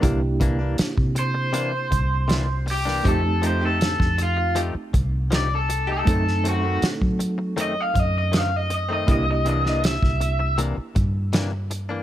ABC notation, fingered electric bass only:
X:1
M:4/4
L:1/16
Q:1/4=80
K:F
V:1 name="Fingered electric bass" clef=bass
C,,4 z C,4- C, C,,6 | F,,4- F,, F,,4 z C,,6 | ^F,,4 z ^F,4- F, F,,6 | C,,4- C,, C,,4 z G,,6 |]